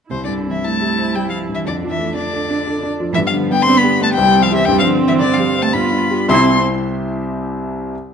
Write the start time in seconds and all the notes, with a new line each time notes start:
0.10 C2 C3 E4 C5
0.23 D3 D5
0.28 G2
0.46 E3 C4
0.51 E5
0.62 A3 E4 A5
0.81 G4
0.98 C5
1.15 G3 G4 G5
1.27 F3 F5
1.31 E4
1.49 G2 E3
1.55 E5
1.65 F2 D3 D4 D5
1.83 F3
1.90 E3 E5
1.99 A3
2.14 D3 D4 D5
2.33 A4
2.50 D4
2.67 A4
2.83 D4
3.00 F3
3.13 G2 E3 B3 E5
3.27 F3 F5
3.34 D3
3.51 G3 B3 G5
3.62 C4 C6
3.69 D4
3.77 B3 B5
3.84 G4
4.01 A3 B4 A5
4.13 G3 C4 G5
4.18 C2
4.35 C4
4.42 F3 F5
4.51 E4 G4
4.55 E3 E5
4.65 G2 G3 G5
4.79 F3 F5
4.86 D3
5.04 E3 C4
5.08 E5
5.20 D3 D4 D5
5.34 F3 F5
5.39 G4
5.56 C5
5.61 A3 A5
5.73 G2 B3 F4 B5
5.92 D4
6.10 F4 G4
6.28 C2 C3 C4 E4 G4 E5 C6